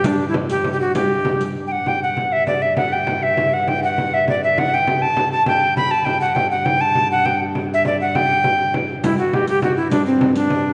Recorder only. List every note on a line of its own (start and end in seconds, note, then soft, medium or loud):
0.06 0.28 D4 medium
0.28 0.35 E4 medium
0.50 0.71 G4 medium
0.73 0.80 G4 medium
0.81 0.94 F#4 medium
0.96 1.44 G4 medium
1.67 1.73 G5 medium
1.72 1.90 F#5 medium
1.88 2.02 G5 medium
2.03 2.34 F#5 medium
2.32 2.46 E5 medium
2.47 2.63 D5 medium
2.62 2.76 E5 medium
2.77 2.94 F#5 medium
2.93 3.24 G5 medium
3.23 3.55 E5 medium
3.54 3.70 F#5 medium
3.68 3.82 G5 medium
3.84 4.15 F#5 medium
4.14 4.28 E5 medium
4.29 4.42 D5 medium
4.44 4.60 E5 medium
4.59 4.75 F#5 medium
4.74 5.03 G5 medium
5.02 5.32 A5 medium
5.32 5.46 A5 medium
5.47 5.75 G5 medium
5.77 5.93 B5 loud
5.91 6.06 A5 loud
6.05 6.20 G5 medium
6.21 6.36 F#5 medium
6.35 6.50 G5 medium
6.51 6.66 F#5 medium
6.65 6.82 G5 medium
6.81 7.10 A5 loud
7.12 7.27 F#5 medium
7.25 7.40 G5 medium
7.74 7.86 E5 medium
7.86 7.99 D5 medium
8.01 8.17 F#5 medium
8.15 8.74 G5 loud
9.04 9.17 E4 medium
9.18 9.35 F#4 medium
9.34 9.48 G4 medium
9.49 9.62 G4 loud
9.63 9.76 F#4 medium
9.77 9.90 E4 medium
9.91 10.05 D4 loud
10.06 10.34 C4 medium
10.36 10.73 D4 loud